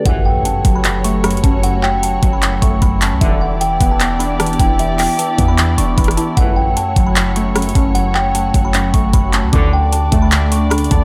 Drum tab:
HH |x-----------x-----x-----x-----x-----x-x-x-x-----|x-----------x-----x-----x-----x-----x-----x-----|x-----------x-----x-----x-----x-----x-x-x-x-----|x-----o-----x-----x-----x-----x-----x-x-x-x-----|
CP |------------------------x-----------------------|------x-----------------x-----------------x-----|------------------------x-----------------------|------x-----------------x-----------------------|
SD |------------------------------------r-----------|------------------------------------------------|------------------------------------r-----------|---------------------------------------r--------|
BD |o-----------------o-----------------------o-----|------------------o-----------o-----o-----------|o-----------------o-----------------------o-----|------------------o-----------------o-----------|

HH |x-----------x-----x-----x-----x-----x-x-x-x-----|x-----------x-----x-----x-----x-----x-----x-----|x-----------x-----x-----x-----x-----x-x-x-x-----|
CP |------------------------x-----------------------|------x-----------------x-----------------x-----|------------------------x-----------------------|
SD |------------------------------------r-----------|------------------------------------------------|------------------------------------r-----------|
BD |o-----------------o-----------------------o-----|------------------o-----------o-----o-----------|o-----------------o-----------------------o-----|